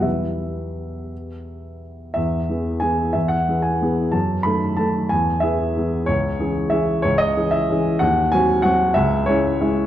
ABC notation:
X:1
M:3/4
L:1/8
Q:1/4=184
K:Em
V:1 name="Upright piano"
e6- | e4 z2 | [K:E] e4 g2 | e f2 g3 |
a2 b2 a2 | g2 e4 | c4 e2 | c d2 e3 |
_g2 ^g2 _g2 | e2 c4 |]
V:2 name="Upright piano"
[E,,G,B,E]6- | [E,,G,B,E]6 | [K:E] E,,2 [E,B,G]2 [E,B,G]2 | E,,2 [E,B,G]2 [E,B,G]2 |
F,,2 [D,A,A]2 [D,A,A]2 | E,,2 [E,B,G]2 [E,B,G]2 | C,,2 [E,CG]2 [E,CG]2 | C,,2 [E,CG]2 [E,CG]2 |
_E,,2 [_G,=C_G]2 [G,CG]2 | C,,2 [G,CE]2 [G,CE]2 |]